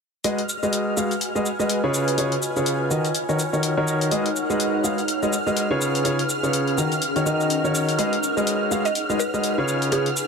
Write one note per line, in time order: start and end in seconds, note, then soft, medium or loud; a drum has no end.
0.24 0.39 G#3 medium
0.24 0.39 F#4 medium
0.24 1.94 F#4 medium
0.24 0.39 G#4 medium
0.24 0.39 B4 medium
0.24 0.39 D#5 medium
0.24 10.27 F6 medium
0.24 closed hi-hat medium
0.24 shaker soft
0.38 closed hi-hat soft
0.49 3.39 G#5 medium
0.49 shaker medium
0.63 0.95 G#3 medium
0.63 0.95 F#4 medium
0.63 0.95 G#4 medium
0.63 0.95 B4 medium
0.63 2.90 B4 medium
0.63 0.95 D#5 medium
0.63 shaker soft
0.73 closed hi-hat medium
0.73 shaker soft
0.95 1.11 G#3 medium
0.95 1.11 F#4 medium
0.95 1.11 G#4 medium
0.95 1.11 B4 medium
0.95 2.34 D#5 medium
0.95 1.11 F5 medium
0.95 shaker medium
1.11 closed hi-hat soft
1.11 shaker soft
1.21 closed hi-hat medium
1.21 shaker soft
1.35 1.46 G#3 medium
1.35 1.46 F#4 medium
1.35 1.46 G#4 medium
1.35 1.46 B4 medium
1.35 1.46 D#5 medium
1.35 shaker soft
1.46 shaker medium
1.59 1.79 G#3 medium
1.59 1.79 F#4 medium
1.59 1.79 G#4 medium
1.59 1.79 B4 medium
1.59 1.79 D#5 medium
1.59 shaker soft
1.69 closed hi-hat medium
1.69 shaker soft
1.84 2.15 C#3 medium
1.84 2.15 F4 medium
1.84 2.15 G#4 medium
1.84 2.16 B4 medium
1.84 2.15 C#5 medium
1.94 shaker medium
2.08 closed hi-hat soft
2.08 shaker soft
2.18 2.32 C#3 medium
2.18 2.32 F4 medium
2.18 2.32 G#4 medium
2.18 2.32 B4 medium
2.18 2.32 C#5 medium
2.18 closed hi-hat medium
2.18 shaker soft
2.22 4.80 C#5 medium
2.32 closed hi-hat soft
2.42 shaker medium
2.56 2.88 C#3 medium
2.56 2.88 F4 medium
2.56 2.88 G#4 medium
2.56 2.88 B4 medium
2.56 2.88 C#5 medium
2.56 shaker soft
2.66 closed hi-hat medium
2.66 shaker soft
2.90 3.05 D#3 medium
2.90 3.05 D#4 medium
2.90 6.21 D#4 medium
2.90 3.05 F#4 medium
2.90 3.05 A#4 medium
2.90 3.05 D#5 medium
2.90 shaker medium
3.05 closed hi-hat soft
3.05 shaker soft
3.15 closed hi-hat medium
3.15 shaker soft
3.29 3.39 D#3 medium
3.29 3.39 D#4 medium
3.29 3.39 F#4 medium
3.29 3.39 A#4 medium
3.29 3.39 C#5 medium
3.29 shaker soft
3.35 5.81 F#5 medium
3.35 shaker medium
3.53 3.72 D#3 medium
3.53 3.72 D#4 medium
3.53 3.72 F#4 medium
3.53 3.72 A#4 medium
3.53 3.72 C#5 medium
3.53 shaker soft
3.63 closed hi-hat medium
3.63 shaker soft
3.77 4.09 D#3 medium
3.77 4.09 D#4 medium
3.77 4.09 F#4 medium
3.77 4.09 A#4 medium
3.77 4.09 C#5 loud
3.88 shaker medium
4.01 closed hi-hat soft
4.01 shaker soft
4.11 4.26 G#3 medium
4.11 4.26 F#4 medium
4.11 4.26 G#4 medium
4.11 4.26 B4 medium
4.11 4.26 D#5 medium
4.11 closed hi-hat medium
4.11 shaker soft
4.26 7.26 G#4 medium
4.26 closed hi-hat soft
4.36 shaker medium
4.50 4.82 G#3 medium
4.50 4.82 F#4 medium
4.50 4.82 G#4 medium
4.50 4.82 B4 medium
4.50 4.82 D#5 medium
4.50 shaker soft
4.60 closed hi-hat medium
4.60 shaker soft
4.80 4.98 G#3 medium
4.80 4.98 F#4 medium
4.80 4.98 G#4 medium
4.80 6.78 B4 medium
4.80 4.98 B4 medium
4.80 4.98 F5 medium
4.84 shaker medium
4.98 closed hi-hat soft
4.98 shaker soft
5.08 closed hi-hat medium
5.08 shaker soft
5.22 5.33 G#3 medium
5.22 5.33 F#4 medium
5.22 5.33 G#4 medium
5.22 5.33 B4 medium
5.22 5.33 D#5 medium
5.22 shaker soft
5.33 shaker medium
5.47 5.66 G#3 medium
5.47 5.66 F#4 medium
5.47 5.66 G#4 medium
5.47 5.66 B4 medium
5.47 5.66 D#5 medium
5.47 shaker soft
5.57 closed hi-hat medium
5.57 shaker soft
5.71 6.02 C#3 medium
5.71 6.03 F4 medium
5.71 6.02 G#4 medium
5.71 6.02 B4 medium
5.71 6.02 C#5 loud
5.81 7.26 C#4 medium
5.81 shaker medium
5.95 closed hi-hat soft
5.95 shaker soft
6.05 6.19 C#3 medium
6.05 6.19 F4 medium
6.05 6.19 G#4 medium
6.05 6.19 B4 medium
6.05 6.19 C#5 medium
6.05 closed hi-hat medium
6.05 shaker soft
6.19 closed hi-hat soft
6.29 shaker medium
6.43 6.75 C#3 medium
6.43 6.75 F4 medium
6.43 6.75 G#4 medium
6.43 6.75 B4 medium
6.43 6.75 C#5 medium
6.43 shaker soft
6.53 closed hi-hat medium
6.53 shaker soft
6.68 closed hi-hat soft
6.77 6.92 D#3 medium
6.77 10.08 D#4 medium
6.77 6.92 D#4 medium
6.77 6.92 F#4 medium
6.77 6.92 A#4 medium
6.77 6.92 D#5 medium
6.77 shaker medium
6.89 7.98 A#4 medium
6.89 closed hi-hat soft
6.89 shaker soft
7.02 closed hi-hat medium
7.02 shaker soft
7.16 7.24 D#3 medium
7.16 7.24 D#4 medium
7.16 7.24 F#4 medium
7.16 7.24 A#4 medium
7.16 7.24 C#5 medium
7.16 closed hi-hat soft
7.16 shaker soft
7.26 7.61 D#3 medium
7.26 7.61 D#4 medium
7.26 7.61 F#4 medium
7.26 7.61 A#4 medium
7.26 7.61 D#5 medium
7.26 shaker medium
7.33 8.67 C#5 medium
7.33 9.68 F#5 medium
7.40 shaker soft
7.50 closed hi-hat medium
7.50 shaker soft
7.64 7.96 D#3 medium
7.64 7.96 D#4 medium
7.64 7.96 F#4 medium
7.64 7.96 A#4 medium
7.64 7.96 C#5 medium
7.64 shaker soft
7.75 shaker medium
7.89 closed hi-hat soft
7.89 shaker soft
7.98 8.13 G#3 medium
7.98 8.13 F#4 medium
7.98 8.13 G#4 medium
7.98 8.13 B4 medium
7.98 8.13 D#5 medium
7.98 closed hi-hat medium
7.98 shaker soft
8.13 closed hi-hat soft
8.22 10.27 G#4 medium
8.22 shaker medium
8.37 8.69 G#3 medium
8.37 8.69 F#4 medium
8.37 8.69 G#4 medium
8.37 8.69 B4 medium
8.37 8.69 D#5 medium
8.37 shaker soft
8.47 closed hi-hat medium
8.47 shaker soft
8.71 8.86 G#3 medium
8.71 8.86 F#4 medium
8.71 8.86 G#4 medium
8.71 8.86 B4 medium
8.71 10.27 B4 medium
8.71 8.86 F5 medium
8.71 shaker medium
8.85 9.01 D#5 medium
8.85 closed hi-hat soft
8.85 shaker soft
8.95 closed hi-hat medium
8.95 shaker soft
9.10 9.20 G#3 medium
9.10 9.20 F#4 medium
9.10 9.20 G#4 medium
9.10 9.20 B4 medium
9.10 9.20 D#5 medium
9.10 shaker soft
9.20 9.58 B4 medium
9.20 shaker medium
9.34 9.53 G#3 medium
9.34 9.53 F#4 medium
9.34 9.53 G#4 medium
9.34 9.53 B4 medium
9.34 9.53 D#5 medium
9.34 shaker soft
9.44 closed hi-hat medium
9.44 shaker soft
9.58 9.90 C#3 medium
9.58 9.90 F4 medium
9.58 9.90 G#4 medium
9.58 9.90 B4 medium
9.58 9.90 C#5 loud
9.68 10.27 C#4 medium
9.68 shaker medium
9.82 closed hi-hat soft
9.82 shaker soft
9.92 10.07 C#3 medium
9.92 10.07 F4 medium
9.92 10.10 G#4 medium
9.92 10.07 G#4 medium
9.92 10.07 B4 medium
9.92 10.07 C#5 medium
9.92 closed hi-hat medium
9.92 shaker soft
10.06 closed hi-hat soft
10.17 shaker medium